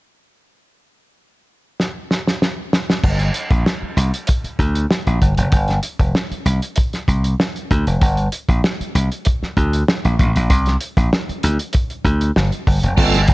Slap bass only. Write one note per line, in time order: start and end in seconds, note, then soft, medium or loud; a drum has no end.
3.04 3.29 G1 medium
3.51 3.63 A#1 medium
3.82 muted slap bass stroke soft
3.97 4.10 C2 medium
4.44 muted slap bass stroke soft
4.59 4.85 D2 medium
5.07 5.19 A#1 medium
5.22 5.35 G1 medium
5.38 5.50 F1 medium
5.52 5.78 G1 medium
6.00 6.12 F1 medium
6.31 muted slap bass stroke soft
6.45 6.59 C2 medium
7.08 7.34 C2 medium
7.71 7.84 D2 medium
7.87 7.99 F1 medium
8.02 8.27 G1 loud
8.49 8.61 A#1 medium
8.80 muted slap bass stroke soft
8.95 9.08 C2 medium
9.42 muted slap bass stroke soft
9.57 9.82 D2 medium
10.05 10.17 A#1 medium
10.19 10.33 A1 medium
10.36 10.50 A#1 medium
10.50 10.76 C2 loud
10.97 11.09 A#1 medium
11.29 muted slap bass stroke soft
11.44 11.57 D2 medium
12.05 12.30 D2 medium
12.36 12.50 G1 medium
12.67 12.81 G1 medium
12.83 12.95 F1 medium
12.97 13.23 G1 loud
13.28 13.34 G1 loud